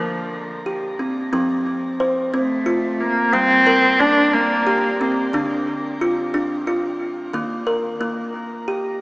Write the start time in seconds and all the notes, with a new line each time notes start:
Already playing: D3 F3
0.00 A#3
0.66 G4
0.99 C4
1.33 F3 C4
2.00 C5
2.34 A3 C4
2.66 F4
3.00 A#3
3.33 G3 A#3 C4
3.67 A#4
4.00 A#3 D4
4.33 A#3
4.67 G4
5.01 C4
5.33 D3 D4
6.01 F4
6.34 D4
6.67 F4
7.33 D#3 A#3
7.67 A#4
8.01 A#3
8.68 G4